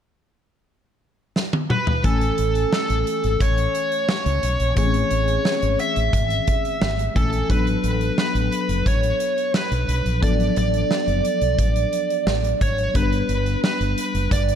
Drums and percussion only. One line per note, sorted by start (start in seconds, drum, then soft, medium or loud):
1.36 snare medium
1.53 high tom medium
1.70 mid tom medium
1.87 floor tom medium
2.04 kick medium
2.04 closed hi-hat medium
2.21 closed hi-hat soft
2.38 closed hi-hat medium
2.55 closed hi-hat soft
2.73 snare medium
2.90 closed hi-hat soft
3.07 closed hi-hat medium
3.24 closed hi-hat soft
3.40 kick medium
3.40 closed hi-hat medium
3.58 closed hi-hat soft
3.75 closed hi-hat medium
3.92 closed hi-hat soft
4.09 snare loud
4.26 closed hi-hat soft
4.43 closed hi-hat medium
4.60 closed hi-hat soft
4.76 kick medium
4.76 closed hi-hat medium
4.94 closed hi-hat soft
5.11 closed hi-hat medium
5.28 closed hi-hat soft
5.45 snare medium
5.62 closed hi-hat soft
5.79 closed hi-hat medium
5.96 closed hi-hat soft
6.13 kick medium
6.13 closed hi-hat medium
6.30 closed hi-hat soft
6.47 kick medium
6.47 closed hi-hat medium
6.65 closed hi-hat soft
6.82 snare loud
6.99 closed hi-hat soft
7.16 kick medium
7.16 closed hi-hat medium
7.33 closed hi-hat soft
7.50 kick loud
7.50 closed hi-hat medium
7.67 closed hi-hat soft
7.84 closed hi-hat medium
8.01 closed hi-hat soft
8.18 snare medium
8.35 closed hi-hat soft
8.52 closed hi-hat medium
8.69 closed hi-hat soft
8.86 kick medium
8.86 closed hi-hat medium
9.03 closed hi-hat soft
9.20 closed hi-hat medium
9.38 closed hi-hat soft
9.54 snare medium
9.72 closed hi-hat soft
9.89 closed hi-hat medium
10.06 closed hi-hat soft
10.23 kick medium
10.23 closed hi-hat medium
10.40 closed hi-hat soft
10.56 closed hi-hat medium
10.74 closed hi-hat soft
10.91 snare medium
11.08 closed hi-hat soft
11.25 closed hi-hat medium
11.41 closed hi-hat soft
11.59 kick medium
11.59 closed hi-hat medium
11.76 closed hi-hat soft
11.93 closed hi-hat medium
12.10 closed hi-hat soft
12.27 snare medium
12.44 closed hi-hat soft
12.61 kick medium
12.61 closed hi-hat medium
12.78 closed hi-hat soft
12.95 kick loud
12.95 closed hi-hat medium
13.12 closed hi-hat soft
13.29 closed hi-hat medium
13.46 closed hi-hat soft
13.64 snare medium
13.81 closed hi-hat soft
13.98 closed hi-hat medium
14.15 closed hi-hat soft
14.31 kick medium
14.31 closed hi-hat medium
14.49 closed hi-hat soft